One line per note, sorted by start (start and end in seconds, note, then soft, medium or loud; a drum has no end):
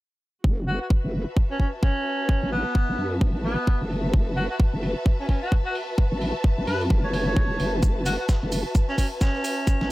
0.44 0.79 F#1 medium
0.44 9.92 F#4 medium
0.44 kick loud
0.67 0.76 F#4 medium
0.67 9.92 B4 medium
0.67 open hi-hat medium
0.74 9.92 E5 medium
0.81 0.87 F#4 medium
0.90 kick loud
1.04 1.25 F#1 medium
1.14 open hi-hat medium
1.31 9.92 A5 medium
1.37 kick loud
1.51 1.56 C#4 medium
1.60 1.69 C#4 medium
1.60 kick medium
1.60 open hi-hat medium
1.83 2.48 C#4 medium
1.83 kick loud
2.06 open hi-hat medium
2.29 kick loud
2.43 2.64 A1 medium
2.52 3.17 B3 medium
2.52 open hi-hat loud
2.75 kick loud
2.89 2.97 A1 loud
2.98 3.20 F#2 medium
2.98 open hi-hat loud
3.21 3.56 A1 medium
3.21 kick loud
3.44 3.81 B3 medium
3.44 open hi-hat loud
3.67 kick loud
3.81 4.12 F#1 medium
3.90 open hi-hat loud
4.13 4.48 F#1 medium
4.13 kick loud
4.37 4.45 F#4 medium
4.37 open hi-hat loud
4.50 4.56 F#4 medium
4.60 kick loud
4.73 4.94 F#1 medium
4.83 open hi-hat loud
5.06 kick loud
5.20 5.26 C#4 medium
5.29 5.38 C#4 medium
5.29 kick medium
5.29 open hi-hat loud
5.43 5.53 F#4 medium
5.52 kick loud
5.65 5.76 F#4 medium
5.75 open hi-hat loud
5.98 kick loud
6.12 6.33 A1 medium
6.21 open hi-hat loud
6.44 kick loud
6.58 6.66 A1 medium
6.67 6.89 F#2 medium
6.67 6.82 B4 medium
6.67 open hi-hat loud
6.81 open hi-hat medium
6.90 7.35 F#1 medium
6.90 kick loud
7.04 7.10 C#5 medium
7.13 7.22 C#5 medium
7.13 open hi-hat loud
7.27 7.73 C#5 medium
7.36 7.58 E1 medium
7.36 kick loud
7.60 7.81 F#1 medium
7.60 open hi-hat loud
7.83 8.17 F#1 medium
7.83 kick loud
7.83 shaker medium
8.06 8.15 F#4 medium
8.06 snare soft
8.06 open hi-hat medium
8.06 shaker medium
8.20 8.26 F#4 medium
8.29 kick loud
8.29 snare loud
8.29 shaker medium
8.43 8.64 F#1 medium
8.52 open hi-hat loud
8.52 shaker medium
8.75 kick loud
8.75 shaker medium
8.89 8.95 C#4 medium
8.89 snare soft
8.98 9.07 C#4 medium
8.98 kick medium
8.98 open hi-hat medium
8.98 shaker medium
9.21 9.87 C#4 medium
9.21 kick loud
9.21 snare loud
9.21 shaker medium
9.35 snare soft
9.44 open hi-hat medium
9.44 shaker medium
9.67 kick loud
9.67 shaker medium
9.81 9.92 A1 medium
9.81 snare medium